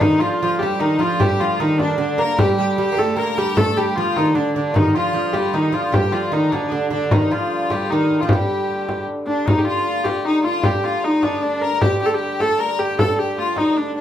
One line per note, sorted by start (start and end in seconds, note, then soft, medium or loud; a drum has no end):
0.01 4.77 G2 medium
0.01 4.77 D3 medium
0.01 0.20 D#3 medium
0.01 0.21 D#4 medium
0.01 0.22 D#4 medium
0.01 frame drum medium
0.20 0.41 F3 medium
0.20 0.60 F4 medium
0.20 0.40 F4 medium
0.20 frame drum soft
0.41 0.62 F3 medium
0.41 0.59 F4 medium
0.59 0.80 G3 medium
0.59 0.80 G4 medium
0.59 0.81 G4 medium
0.59 frame drum medium
0.80 0.98 D#3 medium
0.80 1.03 D#4 medium
0.80 1.01 D#4 medium
0.99 1.20 F3 medium
0.99 1.20 F4 medium
0.99 1.23 F4 medium
0.99 frame drum soft
1.20 1.40 G3 medium
1.20 1.40 G4 medium
1.20 1.42 G4 medium
1.20 frame drum medium
1.40 1.60 F3 medium
1.40 1.60 F4 medium
1.40 1.61 F4 medium
1.60 1.97 D#3 medium
1.60 1.79 D#4 medium
1.78 1.98 D4 medium
1.78 frame drum medium
1.98 2.19 D3 medium
1.98 2.19 D4 medium
1.98 2.17 D4 medium
2.18 2.38 A#3 medium
2.18 2.37 A#4 medium
2.18 2.39 A#4 medium
2.18 frame drum soft
2.38 2.57 G3 medium
2.38 2.56 G4 medium
2.38 2.60 G4 medium
2.38 frame drum medium
2.57 2.77 G3 medium
2.57 2.76 G4 medium
2.57 2.98 G4 loud
2.78 2.92 G3 medium
2.78 3.14 G4 medium
2.92 2.97 A#3 medium
2.97 3.16 A3 medium
2.97 3.18 A4 medium
2.97 frame drum medium
3.17 3.37 A#3 medium
3.17 3.58 A#4 medium
3.17 3.38 A#4 medium
3.38 3.57 G3 medium
3.38 3.57 G4 medium
3.38 frame drum soft
3.57 3.77 A3 medium
3.57 3.79 A4 medium
3.57 3.77 A4 medium
3.57 frame drum medium
3.77 3.97 G3 medium
3.77 3.95 G4 medium
3.77 3.96 G4 medium
3.95 4.17 F3 medium
3.95 4.16 F4 medium
3.95 4.33 F4 medium
3.95 frame drum soft
4.16 4.35 D#3 medium
4.16 4.36 D#4 medium
4.16 frame drum medium
4.35 4.55 D3 medium
4.35 4.54 D4 medium
4.35 4.55 D4 medium
4.35 frame drum soft
4.55 4.74 D3 medium
4.55 4.61 D4 medium
4.55 4.75 D4 medium
4.71 4.95 D#3 medium
4.71 4.94 D#4 medium
4.71 4.77 F4 medium
4.75 9.46 G2 medium
4.75 9.46 D3 medium
4.75 4.95 D#4 medium
4.75 frame drum medium
4.94 5.12 F3 medium
4.94 5.33 F4 medium
4.94 5.55 F4 medium
4.94 frame drum soft
5.13 5.32 F3 medium
5.33 5.54 G3 medium
5.33 5.54 G4 medium
5.33 frame drum medium
5.54 5.72 D#3 medium
5.54 5.76 D#4 medium
5.54 5.74 D#4 medium
5.72 5.93 F3 medium
5.72 5.94 F4 medium
5.72 5.96 F4 medium
5.72 frame drum soft
5.92 6.13 G3 medium
5.92 6.12 G4 medium
5.92 6.15 G4 medium
5.92 frame drum medium
6.12 6.31 F3 medium
6.12 6.34 F4 medium
6.12 6.33 F4 medium
6.12 frame drum soft
6.32 6.52 D#3 medium
6.32 6.67 D#4 medium
6.32 6.52 D#4 medium
6.52 6.71 D3 medium
6.52 6.71 D4 medium
6.52 frame drum medium
6.67 6.91 D4 medium
6.67 6.73 D#4 soft
6.72 6.89 D3 medium
6.72 6.91 D4 medium
6.90 7.11 D3 medium
6.90 7.11 D4 medium
6.90 7.10 D4 medium
6.90 frame drum soft
7.10 7.31 D#3 medium
7.10 7.33 D#4 medium
7.10 7.32 D#4 medium
7.10 frame drum medium
7.31 7.72 F3 medium
7.31 7.92 F4 medium
7.31 7.71 F4 medium
7.31 frame drum soft
7.70 7.91 G3 medium
7.70 7.90 G4 medium
7.70 frame drum medium
7.90 8.21 D#3 medium
7.90 8.19 D#4 medium
7.90 8.21 D#4 medium
8.10 frame drum soft
8.20 8.31 F3 medium
8.20 8.28 F4 medium
8.20 8.30 F4 medium
8.29 9.06 G3 medium
8.29 9.04 G4 medium
8.29 frame drum medium
8.49 frame drum soft
8.69 frame drum soft
8.89 frame drum medium
9.08 frame drum soft
9.27 9.46 D4 medium
9.27 9.48 D4 medium
9.27 frame drum soft
9.46 14.01 G2 medium
9.46 14.01 D3 medium
9.46 9.58 D#4 medium
9.46 9.66 D#4 medium
9.46 frame drum medium
9.58 9.66 G4 medium
9.65 10.05 F4 loud
9.65 10.21 F4 medium
10.04 10.25 G4 medium
10.04 frame drum medium
10.25 10.44 D#4 medium
10.25 10.43 D#4 medium
10.44 10.66 F4 medium
10.44 10.65 F4 loud
10.44 frame drum soft
10.63 10.86 G4 medium
10.63 10.84 G4 medium
10.63 frame drum medium
10.83 11.04 F4 medium
10.83 11.05 F4 medium
10.83 frame drum soft
11.04 11.44 D#4 medium
11.04 11.23 D#4 medium
11.23 11.43 D4 medium
11.23 frame drum medium
11.42 11.65 D4 medium
11.42 11.62 D4 medium
11.62 11.81 A#4 loud
11.62 11.81 A#4 medium
11.62 frame drum soft
11.81 12.00 G4 medium
11.81 12.01 G4 medium
11.81 frame drum medium
12.01 12.07 G4 loud
12.01 12.14 G4 medium
12.01 frame drum soft
12.06 12.14 A4 medium
12.14 12.41 G4 loud
12.14 12.41 G4 medium
12.40 12.60 A4 medium
12.40 12.60 A4 loud
12.40 frame drum medium
12.59 12.80 A#4 medium
12.79 12.99 G4 medium
12.79 12.99 G4 loud
12.79 frame drum soft
12.99 13.19 A4 medium
12.99 13.17 A4 medium
12.99 frame drum medium
13.18 13.36 G4 medium
13.18 13.38 G4 medium
13.38 13.56 F4 medium
13.38 13.58 F4 medium
13.38 frame drum soft
13.57 13.77 D#4 medium
13.57 13.78 D#4 medium
13.57 frame drum medium
13.76 13.95 D4 medium
13.95 14.01 D4 medium